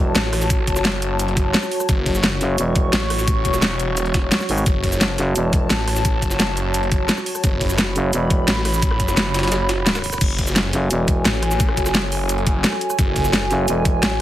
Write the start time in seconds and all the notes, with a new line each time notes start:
Already playing: E1 F#4 C#5 A5
0.15 A1, snare, closed hi-hat, cabasa
0.24 snare
0.33 cross-stick, closed hi-hat, open hi-hat
0.41 snare, cabasa
0.50 kick, closed hi-hat, cabasa
0.67 F#1, kick, closed hi-hat, cabasa
0.76 cross-stick, snare, cabasa
0.85 snare, closed hi-hat, cabasa
1.02 closed hi-hat, cabasa
1.19 closed hi-hat, cabasa
1.28 closed hi-hat
1.37 kick, closed hi-hat, cabasa
1.54 snare, closed hi-hat, cabasa
1.63 cross-stick, snare, cabasa
1.72 closed hi-hat, open hi-hat
1.80 cross-stick, cabasa
1.89 F#1 C#6, kick, closed hi-hat, cabasa
2.06 kick, closed hi-hat, open hi-hat, cabasa
2.15 snare, cabasa
2.24 snare, closed hi-hat, cabasa
2.41 F#1, snare, closed hi-hat, cabasa
2.58 E1, closed hi-hat, cabasa
2.76 kick, closed hi-hat, cabasa
2.93 A1, snare, closed hi-hat, cabasa
3.02 snare
3.10 cross-stick, closed hi-hat, open hi-hat
3.19 snare, cabasa
3.28 kick, closed hi-hat, cabasa
3.45 E1, kick, closed hi-hat, cabasa
3.54 cross-stick, snare, cabasa
3.62 snare, closed hi-hat, cabasa
3.80 closed hi-hat, cabasa
3.97 closed hi-hat, cabasa
4.06 closed hi-hat
4.14 kick, snare, closed hi-hat, cabasa
4.32 snare, closed hi-hat, cabasa
4.40 cross-stick, snare, cabasa
4.49 G#1, closed hi-hat, open hi-hat
4.58 cross-stick, cabasa
4.66 F#1 A5, kick, closed hi-hat, cabasa
4.84 kick, closed hi-hat, open hi-hat, cabasa
4.92 snare, cabasa
5.01 snare, closed hi-hat, cabasa
5.18 F#1, snare, closed hi-hat, cabasa
5.36 E1, closed hi-hat, cabasa
5.53 kick, closed hi-hat, cabasa
5.70 A1, snare, closed hi-hat, cabasa
5.79 snare
5.88 cross-stick, closed hi-hat, open hi-hat
5.96 snare, cabasa
6.05 kick, closed hi-hat, cabasa
6.22 F#1, kick, closed hi-hat, cabasa
6.31 cross-stick, snare, cabasa
6.40 snare, closed hi-hat, cabasa
6.57 closed hi-hat, cabasa
6.74 closed hi-hat, cabasa
6.83 closed hi-hat
6.92 kick, closed hi-hat, cabasa
7.09 snare, closed hi-hat, cabasa
7.18 cross-stick, snare, cabasa
7.26 closed hi-hat, open hi-hat
7.35 cross-stick, cabasa
7.44 F#1 B5, kick, closed hi-hat, cabasa
7.61 kick, closed hi-hat, open hi-hat, cabasa
7.70 snare, cabasa
7.78 snare, closed hi-hat, cabasa
7.96 F#1, closed hi-hat, cabasa
8.13 E1, closed hi-hat, cabasa
8.30 kick, closed hi-hat, cabasa
8.48 A1, snare, closed hi-hat, cabasa
8.56 snare
8.65 cross-stick, closed hi-hat, open hi-hat
8.74 cabasa
8.82 kick, closed hi-hat, cabasa
8.91 cross-stick
9.00 F#1, kick, closed hi-hat, cabasa
9.08 cross-stick, snare, cabasa
9.17 snare, closed hi-hat, cabasa
9.34 snare, closed hi-hat, cabasa
9.39 snare, closed hi-hat
9.43 snare, closed hi-hat
9.47 snare, closed hi-hat
9.52 snare, closed hi-hat, cabasa
9.69 snare, closed hi-hat, cabasa
9.86 snare, closed hi-hat, cabasa
9.95 cross-stick, snare, closed hi-hat, cabasa
10.04 open hi-hat
10.12 cross-stick, snare, closed hi-hat, cabasa
10.21 F#1 F#4 C#5 G#5, kick, closed hi-hat, crash, cabasa
10.33 A4
10.39 kick, closed hi-hat, open hi-hat, cabasa
10.47 snare, cabasa
10.56 snare, closed hi-hat, cabasa
10.73 F#1, snare, closed hi-hat, cabasa
10.91 E1 G#5, closed hi-hat, cabasa
11.08 kick, closed hi-hat, cabasa
11.25 A1, snare, closed hi-hat, cabasa
11.34 snare
11.43 cross-stick, closed hi-hat
11.51 snare, cabasa
11.60 kick, closed hi-hat, cabasa
11.69 cross-stick
11.77 F#1, kick, closed hi-hat, cabasa
11.86 cross-stick, snare, cabasa
11.95 snare, closed hi-hat, cabasa
12.12 closed hi-hat, open hi-hat, cabasa
12.29 closed hi-hat, cabasa
12.38 closed hi-hat
12.47 kick, closed hi-hat, cabasa
12.64 snare, closed hi-hat, cabasa
12.73 cross-stick, snare
12.81 closed hi-hat
12.90 cross-stick, cabasa
12.99 F#1, kick, closed hi-hat, cabasa
13.16 kick, closed hi-hat, open hi-hat, cabasa
13.25 snare, cabasa
13.33 snare, closed hi-hat, cabasa
13.51 F#1, snare, closed hi-hat, cabasa
13.68 E1, closed hi-hat, cabasa
13.85 kick, closed hi-hat, cabasa
14.03 A1, snare, closed hi-hat, cabasa
14.11 snare